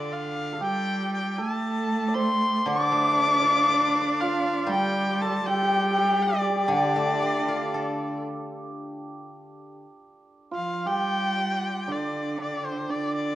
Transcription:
Already playing: D3 D4 F4 G4 A4 D5
0.12 F5
0.53 A4
0.61 G3 G4 G5
1.14 G5
1.37 A3 A4 A5
2.08 D5
2.14 C5 C6
2.66 D3 D4 D5 D6
2.75 D5
2.80 D5
2.88 A3 D5
2.95 D5
3.03 D5
3.12 D5
3.17 D4 D5
3.27 D5
3.34 D5
3.42 F4 D5
3.50 D5
3.57 D5
3.65 A4 D5
3.73 D5
3.80 D5
3.95 D5
4.01 D5
4.20 F4 F5
4.66 G3
4.71 G4 G5
5.21 A4 A5
5.43 G3 G5
5.47 G4
5.54 G4
5.62 G4
5.69 G4
5.76 G4
5.84 G4
5.90 G4
5.98 G4
6.04 G4
6.11 G4
6.19 G4 D5
6.27 G4
6.33 G4
6.41 G4
6.50 G4
6.56 G4
6.68 D3 D5
6.73 D4
6.96 A3
7.22 D4
7.48 F4
7.74 A4
10.51 F3 F4 F5
10.86 G3 G4 G5
11.87 D3 D4 D5
12.38 D4
12.42 D5
12.65 C5
12.89 D3 D4 D5
13.15 D5

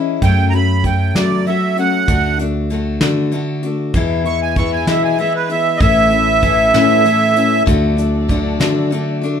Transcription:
Already playing: E3 G#3 C#4 E4
0.22 F#2 C#3 F#3 A3 C#4 G5, kick, closed hi-hat
0.50 F#4 A#5, closed hi-hat
0.55 F#3 A3 C#4 B5
0.84 F#3 A3 C#4 G5, kick, closed hi-hat
1.15 F#2 C#3 F#3 A3 F#4 D5, snare, closed hi-hat
1.46 F#3 A3 C#4 F#4 E5, closed hi-hat
1.77 F#3 A3 C#4 F#4 F#5, closed hi-hat
2.08 D2 D3 A3 D4 F#4, kick, closed hi-hat
2.38 D4 F#4, closed hi-hat
2.43 A3
2.70 D3 A3 D4 F#4, closed hi-hat
3.01 D3 A3 D4 F#4, snare, closed hi-hat
3.32 D3 A3 D4 F#4, closed hi-hat
3.63 A3 D4 F#4, closed hi-hat
3.93 E2 B2 E3 G#3 B3 G#4 E5, kick, closed hi-hat
3.97 E4
4.24 E3 G#3 B3 E4 C#6, closed hi-hat
4.42 G#5
4.56 E3 G#3 B3 E4 C#6, kick, closed hi-hat
4.73 G#5
4.87 E2 B2 E3 G#3 B3 E4 E5, snare, closed hi-hat
5.04 G#5
5.18 E3 G#3 B3 E4 E5, closed hi-hat
5.35 B4
5.49 E3 G#3 B3 E4 E5, closed hi-hat
5.76 A1 A2 A4 D#5
5.80 E3 A3 C#4 E4 E5, kick, closed hi-hat
6.10 A3 C#4 E4, closed hi-hat
6.43 E3 A3 C#4 E4, kick, closed hi-hat
6.74 A2 E3 A3 C#4 E4, snare, closed hi-hat
7.04 E3 A3 C#4 E4, closed hi-hat
7.35 A3 C#4 E4, closed hi-hat
7.66 D2 D3 F#3 A3 D4 F#4 A4 D5, kick, closed hi-hat
7.97 A3 D4 F#4, closed hi-hat
8.29 D3 A3 D4 F#4, kick, closed hi-hat
8.60 D3 A3 D4 F#4, snare, closed hi-hat
8.91 D3 A3 D4 F#4, closed hi-hat
9.21 A3 D4 F#4, closed hi-hat

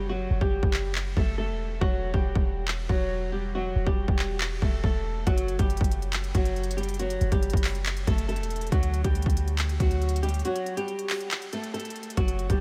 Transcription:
Already playing: F#1
0.09 F#3 F#4
0.30 F#1
0.41 F#1 G3 G4, kick
0.63 F#1, kick
0.74 clap
0.95 clap
1.17 F#1 A3 A4, kick
1.38 A3 A4
1.49 E1
1.81 E1 F#3 F#4, kick
2.13 E1 G3 G4, kick
2.35 E1, kick
2.68 clap
2.89 E1 F#3 F#4, kick
3.32 G3 G4
3.55 F#3 F#4
3.76 E1
3.87 E1 G3 G4, kick
4.08 E1, kick
4.19 clap
4.41 clap
4.62 E1 A3 A4, kick
4.84 E1 A3 A4, kick
5.27 F#1 F#3 F#4, kick, closed hi-hat
5.38 closed hi-hat
5.48 closed hi-hat
5.59 F#1 G3 G4, kick, closed hi-hat
5.70 closed hi-hat
5.77 F#1, kick, closed hi-hat
5.84 closed hi-hat
5.92 closed hi-hat
6.02 closed hi-hat
6.13 clap, closed hi-hat
6.24 closed hi-hat
6.35 F#1 F#3 F#4, kick, closed hi-hat
6.45 closed hi-hat
6.56 closed hi-hat
6.63 closed hi-hat
6.71 closed hi-hat
6.77 G3 G4, closed hi-hat
6.83 closed hi-hat
6.89 closed hi-hat
6.94 closed hi-hat
6.99 F#3 F#4, closed hi-hat
7.10 closed hi-hat
7.21 F#1, closed hi-hat
7.32 F#1 G3 G4, kick, closed hi-hat
7.43 closed hi-hat
7.50 F#1, kick, closed hi-hat
7.57 closed hi-hat
7.64 clap, open hi-hat
7.75 closed hi-hat
7.86 clap, closed hi-hat
7.97 closed hi-hat
8.07 F#1 A3 A4, kick, closed hi-hat
8.18 closed hi-hat
8.28 A3 A4, closed hi-hat
8.36 E1, closed hi-hat
8.43 closed hi-hat
8.50 closed hi-hat
8.56 closed hi-hat
8.61 closed hi-hat
8.67 closed hi-hat
8.72 D2 F#3 F#4, kick, closed hi-hat
8.83 closed hi-hat
8.94 closed hi-hat
9.04 D2 G3 G4, kick, closed hi-hat
9.15 closed hi-hat
9.22 D2, kick, closed hi-hat
9.30 closed hi-hat
9.37 closed hi-hat
9.48 closed hi-hat
9.58 clap, closed hi-hat
9.69 closed hi-hat
9.80 D2 F#3 F#4, kick, closed hi-hat
9.91 closed hi-hat
10.02 closed hi-hat
10.09 closed hi-hat
10.16 closed hi-hat
10.23 G3 G4, closed hi-hat
10.29 closed hi-hat
10.34 closed hi-hat
10.39 closed hi-hat
10.45 F#3 F#4, closed hi-hat
10.56 closed hi-hat
10.66 closed hi-hat
10.77 G3 G4, closed hi-hat
10.88 closed hi-hat
10.99 closed hi-hat
11.10 clap, open hi-hat
11.20 closed hi-hat
11.31 clap, closed hi-hat
11.42 closed hi-hat
11.53 A3 A4, closed hi-hat
11.64 closed hi-hat
11.74 A3 A4, closed hi-hat
11.80 closed hi-hat
11.85 closed hi-hat
11.90 closed hi-hat
11.96 closed hi-hat
12.03 closed hi-hat
12.10 closed hi-hat
12.17 F#1 F#3 F#4, kick, closed hi-hat
12.28 closed hi-hat
12.39 closed hi-hat
12.50 F#1 G3 G4, kick, closed hi-hat

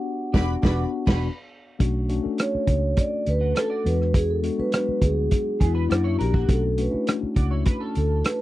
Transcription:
Already playing: B3 D4 F#4 G4 F#5
0.33 E1 B3 D4 F#4 B4 D5 B5, kick, snare
0.62 E1 B3 D4 F#4 B4 D5 B5, kick, snare
1.07 E1 B3 D4 F#4 B4 B5, kick, snare, crash
1.79 B1 A3 C#4 D4 F#4, kick, closed hi-hat
2.09 A3 C#4 D4 F#4, closed hi-hat
2.22 A3 C#4 D4 A4, muted fingered electric bass stroke
2.38 C#5, cross-stick, closed hi-hat
2.55 muted fingered electric bass stroke
2.67 C#2, kick, closed hi-hat
2.97 D5, kick, closed hi-hat
3.26 D2 B4, closed hi-hat
3.41 A3 F#4
3.55 C#4 A4, cross-stick, closed hi-hat
3.70 F#4 D5
3.84 E2 G#3 B3 D4 F#4 B4, closed hi-hat
4.02 cross-stick
4.14 G#4, kick, closed hi-hat
4.30 A4
4.43 G#3 B3 D4 F#4, closed hi-hat
4.57 F#3 B3 D4 F#4 B4, muted fingered electric bass stroke
4.64 G#3
4.72 cross-stick, closed hi-hat
4.89 muted fingered electric bass stroke
5.02 D2 G#4, kick, closed hi-hat
5.31 kick, closed hi-hat
5.60 E2 B3 E4 G#4, kick, closed hi-hat
5.75 D4 B4
5.89 F#2 A#3 C#4 D4 E4 F#4 D5, cross-stick, closed hi-hat
6.04 E4 C#5
6.13 F#4
6.19 A#1 D4 G4 A#4, closed hi-hat
6.33 A#3 F#4, kick
6.47 B1 A3 C#4 D4 F#4 A4, kick, closed hi-hat
6.77 A3 C#4 D4 F#4 B4, closed hi-hat
6.91 A3 C#4 D4 E4, muted fingered electric bass stroke
7.07 cross-stick, closed hi-hat
7.23 muted fingered electric bass stroke
7.36 C#2 F#4 D5, kick, closed hi-hat
7.51 E4 C#5
7.66 D4 B4, kick, closed hi-hat
7.80 C#4 A4
7.95 D2 A4, closed hi-hat
8.24 B4, cross-stick, closed hi-hat

